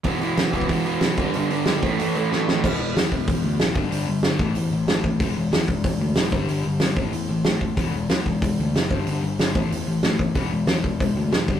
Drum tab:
CC |----------------|----------------|x---------------|----------------|
HH |o-o-o-o-o-o-o-o-|o-o-o-o-o-o-----|----o---o---o---|o---o---o---o---|
SD |----o-------o---|----o-------o-o-|----o-------o---|----o-------o---|
BD |o-----ooo-----o-|------o---------|o-----o-o-----o-|------o-------o-|

CC |----------------|----------------|----------------|----------------|
HH |o---o---o---o---|o---o---o---o---|o---o---o---o---|o---o---o---o---|
SD |----o-------o---|----o-------o---|----o-------o---|----o-------o---|
BD |o-----o-o-----o-|------o-------o-|o-----o-o-----o-|------o-------o-|

CC |----------------|
HH |o---o---o---o---|
SD |----o-------o---|
BD |o-----o-o-----o-|